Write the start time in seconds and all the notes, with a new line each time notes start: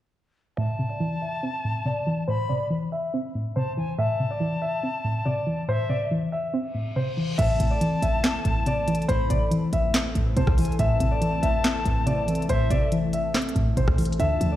0.57 A2 E5 A5
0.79 C3
0.90 D5
1.00 E3
1.22 E5
1.43 C4
1.64 A2
1.85 C3 D5
2.07 E3
2.28 A2 C5 B5
2.49 C3 D5
2.70 E3
2.92 E5
3.14 C4
3.35 A2
3.56 C3 C5 A5
3.77 E3 G#5
3.98 A2 E5 A5
4.20 C3
4.31 D5
4.40 E3
4.62 E5
4.83 C4
5.04 A2
5.25 C3 D5
5.47 E3
5.68 A2 C5 E5
5.89 C3 D5
6.11 E3
6.32 E5
6.54 C4, reverse cymbal
6.74 A2
6.96 C3 C5
7.17 E3
7.38 A1 A2 E3 A3 C4 A4 E5 A5, closed hi-hat, crash
7.60 A1 C3, closed hi-hat
7.71 D5
7.81 E3, closed hi-hat
8.02 A1 E5, closed hi-hat
8.24 C4, snare, clap, closed hi-hat
8.45 A1 A2, closed hi-hat
8.66 C3 D5, closed hi-hat
8.88 E3, closed hi-hat
8.95 closed hi-hat
9.02 closed hi-hat
9.08 A1 A2 C5 B5, closed hi-hat
9.30 A1 C3 D5, closed hi-hat
9.51 E3, closed hi-hat
9.73 A1 E5, closed hi-hat
9.94 C4, snare, clap, closed hi-hat
10.15 A1 A2, closed hi-hat
10.37 C2 C3 C5 A5, closed hi-hat
10.47 kick, cross-stick
10.58 E3 G#5, closed hi-hat, open hi-hat
10.65 B1, closed hi-hat
10.72 closed hi-hat
10.79 A1 A2 E5 A5, closed hi-hat
11.00 A1 C3, closed hi-hat
11.11 D5
11.21 E3, closed hi-hat
11.43 A1 E5, closed hi-hat
11.64 C4, snare, clap, closed hi-hat
11.85 A1 A2, closed hi-hat
12.06 C3 D5, closed hi-hat
12.28 E3, closed hi-hat
12.35 closed hi-hat
12.42 closed hi-hat
12.49 A1 A2 C5 E5, closed hi-hat
12.70 A1 C3 D5, closed hi-hat
12.92 E3, closed hi-hat
13.13 E5, closed hi-hat
13.34 C4, snare, clap, closed hi-hat
13.42 closed hi-hat
13.49 closed hi-hat
13.55 A1 A2, closed hi-hat
13.77 A1 C3 C5, closed hi-hat
13.88 kick, cross-stick
13.98 E3, closed hi-hat, open hi-hat
14.05 closed hi-hat
14.12 closed hi-hat
14.19 D2 D3 F3 D4 E5 A5, closed hi-hat
14.41 D2 F3, closed hi-hat
14.52 D5